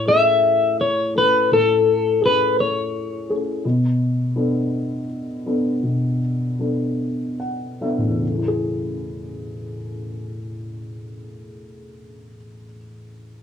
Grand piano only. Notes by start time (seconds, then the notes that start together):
Already playing: A2
0.07 A3 C#4 G#4
1.15 A3 C#4 A4
1.51 A2
2.21 A3 C#4 G#4
3.29 A3 C#4 G#4
3.65 B2
4.36 B3 D4 A4
5.46 B3 D4 A4
5.83 B2
6.59 B3 D4 A4
7.40 F#5
7.81 B3 D4 A4 E5
7.98 A1
8.08 E2
8.18 C#3
8.28 A3
8.37 E4
8.48 G#4